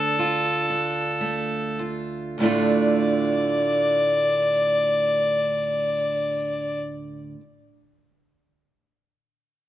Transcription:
Already playing: steel-string acoustic guitar D2 D4, fiddle A4
0.19 steel-string acoustic guitar F4
0.70 steel-string acoustic guitar D4
1.21 steel-string acoustic guitar A3
1.79 steel-string acoustic guitar F4
2.38 steel-string acoustic guitar D2 A2 D3, fiddle D5
2.43 steel-string acoustic guitar A3 D4 F4

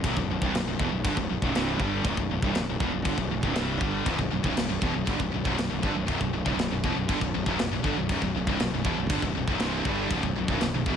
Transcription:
0.04 fingered electric bass B0, distorted electric guitar B1 F#2, kick, crash
0.17 fingered electric bass B0, distorted electric guitar B1 F#2, kick
0.29 fingered electric bass B0, distorted electric guitar B1 F#2
0.41 fingered electric bass C1, distorted electric guitar C2 G2, kick
0.53 fingered electric bass B0, distorted electric guitar B1 F#2, snare, crash
0.65 fingered electric bass B0, distorted electric guitar B1 F#2
0.79 fingered electric bass E1, distorted electric guitar E2 B2, kick
0.92 fingered electric bass B0, distorted electric guitar B1 F#2
1.05 fingered electric bass G1, distorted electric guitar G2 D3, kick, crash
1.17 fingered electric bass B0, distorted electric guitar B1 F#2, kick
1.30 fingered electric bass B0, distorted electric guitar B1 F#2
1.42 fingered electric bass B0, distorted electric guitar B1 F#2, kick
1.55 fingered electric bass C1, distorted electric guitar C2 G2 C3, snare, crash
1.80 fingered electric bass G1, distorted electric guitar G2 D3 G3, kick
2.04 fingered electric bass B0, distorted electric guitar B1 F#2, kick, crash
2.17 fingered electric bass B0, distorted electric guitar B1 F#2, kick
2.31 fingered electric bass B0, distorted electric guitar B1 F#2
2.42 fingered electric bass C1, distorted electric guitar C2 G2, kick
2.55 fingered electric bass B0, distorted electric guitar B1 F#2, snare, crash
2.69 fingered electric bass B0, distorted electric guitar B1 F#2
2.80 fingered electric bass E1, distorted electric guitar E2 B2, kick
2.93 fingered electric bass B0, distorted electric guitar B1 F#2
3.05 fingered electric bass G1, distorted electric guitar G2 D3, kick, crash
3.18 fingered electric bass B0, distorted electric guitar B1 F#2, kick
3.31 fingered electric bass B0, distorted electric guitar B1 F#2
3.43 fingered electric bass B0, distorted electric guitar B1 F#2, kick
3.55 fingered electric bass C1, distorted electric guitar C2 G2 C3, snare, crash
3.80 fingered electric bass G1, distorted electric guitar G2 D3 G3, kick
4.05 fingered electric bass B0, distorted electric guitar B1 F#2, kick, crash
4.18 fingered electric bass B0, distorted electric guitar B1 F#2, kick
4.31 fingered electric bass B0, distorted electric guitar B1 F#2
4.44 fingered electric bass C1, distorted electric guitar C2 G2, kick
4.56 fingered electric bass B0, distorted electric guitar B1 F#2, snare, crash
4.69 fingered electric bass B0, distorted electric guitar B1 F#2
4.82 fingered electric bass E1, distorted electric guitar E2 B2, kick
4.95 fingered electric bass B0, distorted electric guitar B1 F#2
5.07 fingered electric bass G1, distorted electric guitar G2 D3, kick, crash
5.20 fingered electric bass B0, distorted electric guitar B1 F#2, kick
5.34 fingered electric bass B0, distorted electric guitar B1 F#2
5.45 fingered electric bass B0, distorted electric guitar B1 F#2, kick
5.58 fingered electric bass B0, distorted electric guitar B1 F#2, snare, crash
5.71 fingered electric bass B0, distorted electric guitar B1 F#2
5.83 fingered electric bass G1, distorted electric guitar G2 D3, kick
5.96 fingered electric bass B0, distorted electric guitar B1 F#2
6.08 fingered electric bass B0, distorted electric guitar B1 F#2, kick, crash
6.20 fingered electric bass B0, distorted electric guitar B1 F#2, kick
6.33 fingered electric bass B0, distorted electric guitar B1 F#2
6.45 fingered electric bass C1, distorted electric guitar C2 G2, kick
6.57 fingered electric bass B0, distorted electric guitar B1 F#2, snare, crash
6.70 fingered electric bass B0, distorted electric guitar B1 F#2
6.84 fingered electric bass E1, distorted electric guitar E2 B2, kick
6.96 fingered electric bass B0, distorted electric guitar B1 F#2
7.08 fingered electric bass G1, distorted electric guitar G2 D3, kick, crash
7.21 fingered electric bass B0, distorted electric guitar B1 F#2, kick
7.35 fingered electric bass B0, distorted electric guitar B1 F#2
7.46 fingered electric bass B0, distorted electric guitar B1 F#2, kick
7.59 fingered electric bass B0, distorted electric guitar B1 F#2, snare, crash
7.72 fingered electric bass B0, distorted electric guitar B1 F#2
7.83 fingered electric bass G1, distorted electric guitar G2 D3, kick
7.97 fingered electric bass B0, distorted electric guitar B1 F#2
8.09 fingered electric bass B0, distorted electric guitar B1 F#2, kick, crash
8.22 fingered electric bass B0, distorted electric guitar B1 F#2, kick
8.34 fingered electric bass B0, distorted electric guitar B1 F#2
8.47 fingered electric bass C1, distorted electric guitar C2 G2, kick
8.60 fingered electric bass B0, distorted electric guitar B1 F#2, snare, crash
8.72 fingered electric bass B0, distorted electric guitar B1 F#2
8.85 fingered electric bass E1, distorted electric guitar E2 B2, kick
8.96 fingered electric bass B0, distorted electric guitar B1 F#2
9.10 fingered electric bass G1, distorted electric guitar G2 D3, kick, crash
9.22 fingered electric bass B0, distorted electric guitar B1 F#2, kick
9.34 fingered electric bass B0, distorted electric guitar B1 F#2
9.48 fingered electric bass B0, distorted electric guitar B1 F#2, kick
9.59 fingered electric bass C1, distorted electric guitar C2, snare, crash
9.64 distorted electric guitar G2 C3
9.85 fingered electric bass G1, distorted electric guitar G2 D3 G3, kick
10.11 fingered electric bass B0, distorted electric guitar B1 F#2, kick, crash
10.23 fingered electric bass B0, distorted electric guitar B1 F#2, kick
10.35 fingered electric bass B0, distorted electric guitar B1 F#2
10.48 fingered electric bass C1, distorted electric guitar C2 G2, kick
10.61 fingered electric bass B0, distorted electric guitar B1 F#2, snare, crash
10.73 fingered electric bass B0, distorted electric guitar B1 F#2
10.86 fingered electric bass E1, distorted electric guitar E2 B2, kick

